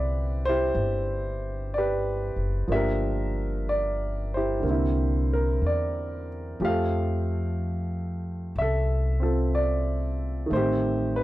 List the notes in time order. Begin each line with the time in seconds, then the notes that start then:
Already playing: C2 D3 C4 D4 E4 G4 B4 D5 E5
0.45 E4 G4 C5
0.75 G1
1.74 G4 D5
1.78 B4
2.36 F#1
2.67 G1 F3 A#3 D4
2.72 G4 A#4 E5
3.69 D5
4.34 E4 G4 C5
4.60 C2 D3 A#3
4.67 C4 E4
5.33 A#4
5.62 E2
5.66 D5
6.60 F2 F3 A3 G4
6.65 A4 F5
8.56 C2 E5
8.62 A4
9.20 C4 F4 A4
9.55 D5
10.46 D#3 A3
10.51 A1 C4 C5
10.57 G4
11.16 B4